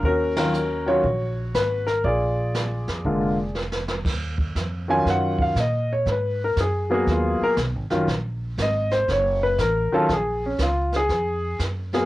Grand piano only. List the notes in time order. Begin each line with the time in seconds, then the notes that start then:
0.05 C#4 F#4 A#4
0.37 D#3 F#3 C#4 F4 F#4 A#4
0.86 D#3 F#3 C#4 F4 F#4 C#5
1.55 B4
1.87 A#4
2.05 F4 G#4 D5
3.05 D3 G#3 A#3 F4
4.88 D#3 F#3 C#4 F4 G#5
5.10 F#5
5.42 F5
5.60 D#5
5.93 C#5
6.12 B4
6.44 A#4
6.60 G#4
6.90 F#3 A#3 B3 F#4 G#4
7.11 F4
7.43 A#4
7.90 D#3 F#3 C#4 F4
8.62 D#5
8.92 C5
9.12 C#5
9.43 B4
9.61 A#4
9.92 D#3 F#3 C#4 F4 A4
10.13 G#4
10.46 C#4
10.62 F4
10.96 G#4
11.93 F#3 A#3 B3 G#4